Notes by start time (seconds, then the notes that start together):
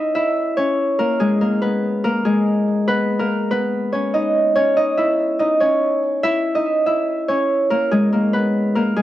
Already playing: C#4 D#4 C#5 D#5
0.15 E4 E5
0.57 C#4 C#5
0.99 A#3 A#4
1.20 G#3 G#4
1.41 A#3 A#4
1.62 B3 B4
2.04 A#3 A#4
2.25 G#3 G#4
2.88 B3 B4
3.19 A#3 A#4
3.51 B3 B4
3.93 C#4 C#5
4.14 D#4 D#5
4.56 C#4 C#5
4.77 D#4 D#5
4.97 E4 E5
5.39 D#4 D#5
5.60 C#4 C#5
6.23 E4 E5
6.55 D#4 D#5
6.86 E4 E5
7.28 C#4 C#5
7.70 A#3 A#4
7.91 G#3 G#4
8.12 A#3 A#4
8.33 B3 B4
8.75 A#3 A#4
8.96 G#3 G#4